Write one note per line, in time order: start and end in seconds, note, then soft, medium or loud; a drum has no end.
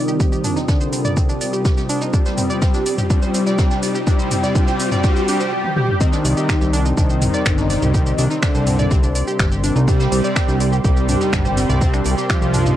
0.00 0.17 C3 medium
0.00 5.48 C3 medium
0.00 5.52 C3 medium
0.00 0.59 D#3 loud
0.00 0.17 G3 medium
0.00 5.52 G3 medium
0.00 0.17 C4 medium
0.00 5.48 C4 medium
0.00 5.52 C4 medium
0.00 0.59 D#4 loud
0.00 5.52 F4 medium
0.00 2.77 A#4 medium
0.00 5.52 D#6 medium
0.00 riser medium
0.08 0.18 G4 medium
0.08 shaker soft
0.20 0.54 C3 medium
0.20 0.54 G3 medium
0.20 0.54 C4 medium
0.20 0.26 G4 medium
0.20 kick loud
0.20 closed hi-hat medium
0.20 shaker medium
0.32 0.42 G4 medium
0.32 shaker soft
0.44 0.56 D4 loud
0.44 closed hi-hat medium
0.44 mid tom medium
0.44 open hi-hat loud
0.44 shaker medium
0.56 2.11 C3 medium
0.56 2.11 G3 medium
0.56 2.11 C4 medium
0.56 0.66 D#4 medium
0.56 snare soft
0.56 shaker soft
0.68 1.31 D3 medium
0.68 1.31 D4 loud
0.68 0.78 D4 medium
0.68 kick loud
0.68 snare loud
0.68 closed hi-hat medium
0.68 shaker medium
0.81 0.90 C5 medium
0.81 shaker soft
0.92 1.02 C4 medium
0.92 closed hi-hat medium
0.92 open hi-hat loud
0.92 shaker medium
1.05 1.11 D5 loud
1.05 closed hi-hat soft
1.05 mid tom medium
1.05 shaker soft
1.17 1.28 C4 loud
1.17 kick loud
1.17 closed hi-hat medium
1.17 shaker medium
1.29 1.40 D4 medium
1.29 shaker soft
1.41 1.47 D5 medium
1.41 closed hi-hat medium
1.41 open hi-hat loud
1.41 shaker medium
1.53 1.63 G4 medium
1.53 shaker soft
1.65 1.71 G4 medium
1.65 kick loud
1.65 snare loud
1.65 closed hi-hat loud
1.65 shaker medium
1.77 1.87 G4 medium
1.77 snare medium
1.77 shaker soft
1.89 2.01 D4 loud
1.89 closed hi-hat medium
1.89 open hi-hat loud
1.89 shaker medium
2.02 2.11 D#4 medium
2.02 shaker soft
2.13 2.47 G3 medium
2.13 3.01 G3 loud
2.13 2.47 C4 medium
2.13 2.23 D4 medium
2.13 3.01 G4 loud
2.13 kick loud
2.13 closed hi-hat medium
2.13 shaker medium
2.26 2.35 C5 medium
2.26 snare soft
2.26 shaker soft
2.37 2.47 C4 medium
2.37 closed hi-hat medium
2.37 mid tom medium
2.37 open hi-hat loud
2.37 shaker medium
2.50 3.08 C3 medium
2.50 3.08 G3 medium
2.50 3.08 C4 medium
2.50 2.56 D5 medium
2.50 shaker soft
2.62 2.74 C4 medium
2.62 5.52 C5 medium
2.62 kick loud
2.62 snare loud
2.62 closed hi-hat medium
2.62 shaker medium
2.74 2.86 D4 medium
2.74 snare soft
2.74 shaker soft
2.86 2.92 D5 medium
2.86 closed hi-hat medium
2.86 open hi-hat loud
2.86 shaker medium
2.98 3.08 G4 medium
2.98 mid tom medium
2.98 shaker soft
3.10 3.44 C3 medium
3.10 3.44 G3 medium
3.10 3.98 G3 loud
3.10 3.44 C4 medium
3.10 3.20 D4 medium
3.10 3.97 G4 loud
3.10 kick loud
3.10 closed hi-hat medium
3.10 shaker medium
3.22 3.32 C5 medium
3.22 closed hi-hat soft
3.22 shaker soft
3.34 3.44 C4 medium
3.34 closed hi-hat medium
3.34 open hi-hat loud
3.34 shaker medium
3.46 4.05 C3 medium
3.46 4.05 G3 medium
3.46 4.05 C4 medium
3.46 3.52 D5 loud
3.46 snare soft
3.46 shaker soft
3.59 3.70 C4 loud
3.59 kick loud
3.59 snare loud
3.59 closed hi-hat medium
3.59 shaker medium
3.71 3.82 D4 medium
3.71 snare medium
3.71 shaker soft
3.83 3.89 D5 medium
3.83 snare medium
3.83 closed hi-hat medium
3.83 open hi-hat loud
3.83 shaker medium
3.95 4.05 G4 medium
3.95 shaker soft
4.07 4.41 C3 medium
4.07 4.54 G3 loud
4.07 4.41 G3 medium
4.07 4.41 C4 medium
4.07 4.17 D4 medium
4.07 4.54 G4 loud
4.07 kick loud
4.07 closed hi-hat medium
4.07 shaker medium
4.19 4.29 C5 medium
4.19 shaker soft
4.31 4.41 C4 medium
4.31 closed hi-hat medium
4.31 mid tom medium
4.31 open hi-hat loud
4.31 shaker medium
4.43 4.54 C3 medium
4.43 4.54 G3 medium
4.43 4.54 C4 medium
4.43 4.49 D5 loud
4.43 snare soft
4.43 shaker soft
4.55 4.89 C3 medium
4.55 4.89 G3 medium
4.55 5.02 G3 loud
4.55 4.89 C4 medium
4.55 4.65 D4 medium
4.55 5.02 G4 loud
4.55 kick loud
4.55 closed hi-hat medium
4.55 shaker medium
4.68 4.77 C5 medium
4.68 closed hi-hat medium
4.68 shaker soft
4.80 4.89 C4 medium
4.80 snare soft
4.80 open hi-hat loud
4.80 shaker medium
4.91 5.02 C3 medium
4.91 5.02 G3 medium
4.91 5.02 C4 medium
4.91 4.98 D5 loud
4.91 closed hi-hat medium
4.91 mid tom medium
4.91 shaker soft
5.03 5.26 C3 medium
5.03 5.26 G3 medium
5.03 5.26 G3 loud
5.03 5.26 C4 medium
5.03 5.14 D4 medium
5.03 5.26 G4 loud
5.03 kick loud
5.03 snare loud
5.03 closed hi-hat medium
5.03 shaker medium
5.16 5.26 C5 medium
5.16 shaker soft
5.28 5.50 C3 medium
5.28 5.50 G3 loud
5.28 5.50 G3 medium
5.28 5.50 C4 medium
5.28 5.38 D4 medium
5.28 5.50 G4 loud
5.28 closed hi-hat medium
5.28 open hi-hat loud
5.28 shaker medium
5.40 5.50 C5 medium
5.40 shaker soft
5.52 5.75 G4 loud
5.65 high tom medium
5.76 5.99 G4 loud
5.76 mid tom medium
5.89 mid tom medium
6.01 6.34 C3 medium
6.01 6.88 D#3 loud
6.01 6.34 G3 medium
6.01 6.34 C4 medium
6.01 12.77 C4 medium
6.01 6.12 C4 loud
6.01 6.88 D#4 loud
6.01 12.77 D5 medium
6.01 12.77 C6 medium
6.01 kick loud
6.01 closed hi-hat medium
6.01 shaker medium
6.12 6.24 D4 medium
6.12 snare soft
6.12 shaker soft
6.24 6.35 C2 loud
6.24 6.31 D5 medium
6.24 closed hi-hat medium
6.24 open hi-hat loud
6.24 shaker medium
6.28 12.77 A#4 medium
6.37 7.91 C3 medium
6.37 7.91 G3 medium
6.37 7.91 C4 medium
6.37 6.47 G4 medium
6.37 shaker soft
6.49 6.55 G4 medium
6.49 finger snap loud
6.49 kick loud
6.49 snare loud
6.49 closed hi-hat medium
6.49 shaker medium
6.60 6.93 C2 medium
6.60 6.71 G4 medium
6.60 snare soft
6.60 shaker soft
6.73 6.85 D4 loud
6.73 closed hi-hat medium
6.73 open hi-hat loud
6.73 shaker medium
6.86 6.95 D#4 medium
6.86 shaker soft
6.97 7.30 C2 medium
6.97 8.33 D#3 loud
6.97 7.07 D4 medium
6.97 8.33 D#4 loud
6.97 kick loud
6.97 closed hi-hat loud
6.97 shaker medium
7.09 7.19 C5 medium
7.09 closed hi-hat soft
7.09 shaker soft
7.21 7.31 C4 medium
7.21 closed hi-hat medium
7.21 mid tom medium
7.21 open hi-hat loud
7.21 shaker medium
7.34 7.40 D5 loud
7.34 snare soft
7.34 shaker soft
7.46 7.78 G1 medium
7.46 7.57 C4 loud
7.46 finger snap loud
7.46 kick loud
7.46 snare loud
7.46 closed hi-hat loud
7.46 shaker medium
7.58 7.69 D4 medium
7.58 snare medium
7.58 mid tom medium
7.58 shaker soft
7.70 7.76 D5 medium
7.70 snare medium
7.70 closed hi-hat medium
7.70 open hi-hat loud
7.70 shaker medium
7.82 8.14 C2 loud
7.82 7.92 G4 medium
7.82 mid tom medium
7.82 shaker soft
7.94 8.28 C3 medium
7.94 8.28 G3 medium
7.94 8.28 C4 medium
7.94 8.00 G4 medium
7.94 kick loud
7.94 closed hi-hat medium
7.94 shaker medium
8.06 8.16 G4 medium
8.06 shaker soft
8.18 8.28 C2 loud
8.18 8.30 D4 loud
8.18 closed hi-hat medium
8.18 open hi-hat loud
8.18 shaker medium
8.30 9.85 C3 medium
8.30 9.85 G3 medium
8.30 9.85 C4 medium
8.30 8.40 D#4 medium
8.30 snare soft
8.30 shaker soft
8.43 9.06 D3 loud
8.43 8.52 D4 medium
8.43 9.06 D4 loud
8.43 finger snap loud
8.43 kick loud
8.43 snare loud
8.43 closed hi-hat medium
8.43 shaker medium
8.55 8.87 C2 medium
8.55 8.64 C5 medium
8.55 shaker soft
8.67 8.77 C4 medium
8.67 closed hi-hat medium
8.67 mid tom medium
8.67 open hi-hat loud
8.67 shaker medium
8.79 8.85 D5 loud
8.79 closed hi-hat soft
8.79 mid tom medium
8.79 shaker soft
8.91 9.23 C2 medium
8.91 9.03 C4 loud
8.91 kick loud
8.91 closed hi-hat loud
8.91 shaker medium
9.03 9.15 D4 medium
9.03 shaker soft
9.15 9.21 D5 medium
9.15 closed hi-hat medium
9.15 open hi-hat loud
9.15 shaker medium
9.27 9.37 G4 medium
9.27 shaker soft
9.39 9.72 G1 medium
9.39 9.45 G4 medium
9.39 finger snap loud
9.39 kick loud
9.39 snare loud
9.39 closed hi-hat medium
9.39 shaker medium
9.51 9.61 G4 medium
9.51 snare soft
9.51 shaker soft
9.64 9.75 D4 loud
9.64 closed hi-hat medium
9.64 open hi-hat loud
9.64 shaker medium
9.76 10.08 C2 loud
9.76 9.85 D#4 medium
9.76 shaker soft
9.87 10.21 C3 medium
9.87 10.21 G3 medium
9.87 10.75 G3 loud
9.87 10.21 C4 medium
9.87 9.97 D4 medium
9.87 10.75 G4 loud
9.87 kick loud
9.87 closed hi-hat medium
9.87 shaker medium
10.00 10.10 C5 medium
10.00 snare medium
10.00 shaker soft
10.12 10.22 C2 loud
10.12 10.22 C4 medium
10.12 closed hi-hat medium
10.12 open hi-hat loud
10.12 shaker medium
10.24 11.78 C3 medium
10.24 11.78 G3 medium
10.24 11.78 C4 medium
10.24 10.30 D5 loud
10.24 shaker soft
10.36 10.48 C4 loud
10.36 finger snap loud
10.36 kick loud
10.36 snare loud
10.36 closed hi-hat medium
10.36 shaker medium
10.48 10.80 C2 medium
10.48 10.60 D4 medium
10.48 snare soft
10.48 shaker soft
10.60 10.66 D5 medium
10.60 closed hi-hat medium
10.60 open hi-hat loud
10.60 shaker medium
10.73 10.82 G4 medium
10.73 shaker soft
10.84 11.17 C2 medium
10.84 12.20 G3 loud
10.84 10.90 G4 medium
10.84 12.20 G4 loud
10.84 kick loud
10.84 closed hi-hat medium
10.84 shaker medium
10.97 11.06 G4 medium
10.97 closed hi-hat soft
10.97 shaker soft
11.08 11.20 D4 loud
11.08 closed hi-hat medium
11.08 mid tom medium
11.08 open hi-hat loud
11.08 shaker medium
11.21 11.30 D#4 medium
11.21 snare soft
11.21 shaker soft
11.33 11.65 G1 medium
11.33 11.43 D4 medium
11.33 finger snap loud
11.33 kick loud
11.33 snare loud
11.33 closed hi-hat loud
11.33 shaker medium
11.45 11.55 C5 medium
11.45 snare medium
11.45 mid tom medium
11.45 shaker soft
11.57 11.67 C4 medium
11.57 snare medium
11.57 closed hi-hat medium
11.57 open hi-hat loud
11.57 shaker medium
11.69 12.01 C2 loud
11.69 11.75 D5 loud
11.69 mid tom medium
11.69 shaker soft
11.81 12.15 G3 medium
11.81 12.15 C4 medium
11.81 11.93 C4 loud
11.81 kick loud
11.81 closed hi-hat medium
11.81 shaker medium
11.94 12.05 D4 medium
11.94 finger snap soft
11.94 shaker soft
12.04 12.15 C2 loud
12.04 12.11 D5 medium
12.04 closed hi-hat medium
12.04 open hi-hat loud
12.04 shaker medium
12.17 12.77 C3 medium
12.17 12.77 G3 medium
12.17 12.77 C4 medium
12.17 12.27 G4 medium
12.17 snare medium
12.17 shaker soft
12.30 12.77 F3 loud
12.30 12.77 F4 loud
12.30 12.36 G4 medium
12.30 finger snap loud
12.30 kick loud
12.30 snare loud
12.30 closed hi-hat medium
12.30 shaker medium
12.42 12.74 C2 medium
12.42 12.51 G4 medium
12.42 shaker soft
12.54 12.66 D4 loud
12.54 closed hi-hat medium
12.54 mid tom medium
12.54 open hi-hat loud
12.54 shaker medium
12.66 12.76 D#4 medium
12.66 closed hi-hat soft
12.66 mid tom medium
12.66 shaker soft